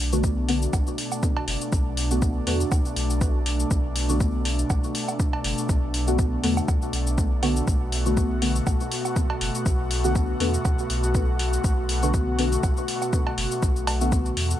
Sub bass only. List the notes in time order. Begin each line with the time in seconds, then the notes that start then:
Already playing: B1
0.73 B1
1.48 F#1
1.73 B1
2.47 E2
2.72 D2
2.96 B1
3.71 B1
4.70 B1
5.44 F#1
5.69 B1
6.44 E2
6.68 D2
6.93 B1
7.68 B1
8.67 B1
9.41 F#1
9.66 B1
10.40 E2
10.65 D2
10.90 B1
11.64 B1
12.63 B1
13.38 F#1
13.63 B1
14.37 E2